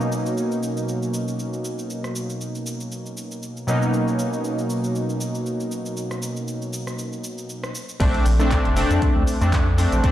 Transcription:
Already playing: synth keys B2 F#3 A#3 C#4 D#4
0.01 cabasa
0.12 cabasa
0.26 cabasa
0.38 cabasa
0.52 cabasa
0.63 cabasa
0.77 cabasa
0.89 cabasa
1.03 cabasa
1.14 cabasa
1.28 cabasa
1.39 cabasa
1.53 cabasa
1.65 cabasa
1.79 cabasa
1.90 cabasa
2.04 cross-stick, cabasa
2.16 cabasa
2.30 cabasa
2.41 cabasa
2.55 cabasa
2.66 cabasa
2.80 cabasa
2.92 cabasa
3.06 cabasa
3.17 cabasa
3.31 cabasa
3.43 cabasa
3.57 cabasa
3.67 synth keys B2 F#3 A#3 C#4 D#4, cabasa
3.82 cabasa
3.94 cabasa
4.08 cabasa
4.19 cabasa
4.33 cabasa
4.44 cabasa
4.59 cabasa
4.70 cabasa
4.84 cabasa
4.95 cabasa
5.09 cabasa
5.21 cabasa
5.35 cabasa
5.46 cabasa
5.60 cabasa
5.72 cabasa
5.86 cabasa
5.97 cabasa
6.11 cross-stick, cabasa
6.22 cabasa
6.36 cabasa
6.48 cabasa
6.62 cabasa
6.73 cabasa
6.87 cross-stick, cabasa
6.99 cabasa
7.13 cabasa
7.24 cabasa
7.38 cabasa
7.50 cabasa
7.64 cross-stick, cabasa
7.75 cabasa
7.89 cabasa
8.00 analog synth bass A#1, synth keys A3 C4 D4, kick, closed hi-hat, crash, cabasa
8.14 closed hi-hat
8.26 analog synth bass A#1, open hi-hat, cabasa
8.39 synth keys A3 C4 D4, cabasa
8.51 kick, clap, closed hi-hat, cabasa
8.65 analog synth bass F1, closed hi-hat
8.76 synth keys A3 C4 D4, open hi-hat, cabasa
8.91 analog synth bass F2, closed hi-hat, cabasa
9.02 synth keys A3 C4 D4, kick, closed hi-hat, cabasa
9.16 analog synth bass D2
9.27 open hi-hat, cabasa
9.41 analog synth bass F2, synth keys A3 C4 D4, closed hi-hat, cabasa
9.53 kick, clap, closed hi-hat, cabasa
9.78 synth keys A3 C4 D4, open hi-hat, cabasa
9.92 analog synth bass A#1, closed hi-hat, cabasa
10.03 synth keys A3 C4 D4, kick, closed hi-hat, cabasa

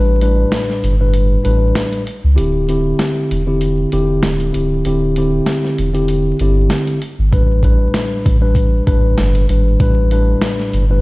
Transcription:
Already playing: sub bass A1, tine electric piano A2 G3 D4 B4
0.21 tine electric piano A2 G3 D4 B4, closed hi-hat
0.52 snare, closed hi-hat
0.70 snare
0.83 sub bass G1, closed hi-hat
1.00 tine electric piano A2 G3 D4 B4
1.14 closed hi-hat
1.43 sub bass A1, tine electric piano A2 G3 D4 B4, closed hi-hat
1.75 snare, closed hi-hat
1.93 closed hi-hat
2.07 closed hi-hat
2.24 sub bass C#2
2.35 sub bass D1, tine electric piano D3 C4 E4 G4, closed hi-hat
2.69 tine electric piano D3 C4 E4 G4, closed hi-hat
2.99 snare, closed hi-hat
3.31 sub bass E1, closed hi-hat
3.46 tine electric piano D3 C4 E4 G4
3.61 closed hi-hat
3.92 sub bass E1, tine electric piano D3 C4 E4 G4, closed hi-hat
4.23 sub bass D1, snare, closed hi-hat
4.40 closed hi-hat
4.52 sub bass C#1, tine electric piano D3 C4 E4 G4, closed hi-hat
4.85 sub bass D1, tine electric piano D3 C4 E4 G4, closed hi-hat
5.16 tine electric piano D3 C4 E4 G4, closed hi-hat
5.46 snare, closed hi-hat
5.64 snare
5.78 sub bass E1, closed hi-hat
5.93 tine electric piano D3 C4 E4 G4, closed hi-hat
6.08 closed hi-hat
6.39 sub bass G1, tine electric piano D3 C4 E4 G4, closed hi-hat
6.70 snare, closed hi-hat
6.87 closed hi-hat
7.02 closed hi-hat
7.19 sub bass G#1
7.31 sub bass A1, tine electric piano A2 G3 D4 B4, kick, closed hi-hat
7.63 tine electric piano A2 G3 D4 B4, kick, closed hi-hat
7.94 snare, closed hi-hat
8.26 sub bass A1, kick, closed hi-hat
8.41 tine electric piano A2 G3 D4 B4
8.55 kick, closed hi-hat
8.86 sub bass A1, tine electric piano A2 G3 D4 B4, kick, closed hi-hat
9.18 sub bass G1, snare, closed hi-hat
9.35 closed hi-hat
9.49 sub bass G#1, tine electric piano A2 G3 D4 B4, closed hi-hat
9.80 sub bass A1, tine electric piano A2 G3 D4 B4, kick, closed hi-hat
10.11 tine electric piano A2 G3 D4 B4, closed hi-hat
10.42 snare, closed hi-hat
10.59 snare
10.73 sub bass G1, closed hi-hat
10.90 tine electric piano A2 G3 D4 B4

